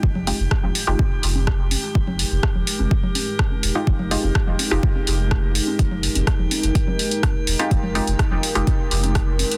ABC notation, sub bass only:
X:1
M:4/4
L:1/16
Q:1/4=125
K:Fm
V:1 name="Sub bass" clef=bass
F,,,2 z F,,, z E,,, z F,,, z2 F,,,4 z2 | F,,,2 z F,,, z E,,, z F,,, z6 E,,, z | F,,,2 z F,,, z E,,, z F,,, z2 F,,,4 z2 | F,,,2 z F,,, z E,,, z F,,, z6 E,,, z |
F,,,2 z F,,, z E,,, z F,,, z2 F,,,4 z2 |]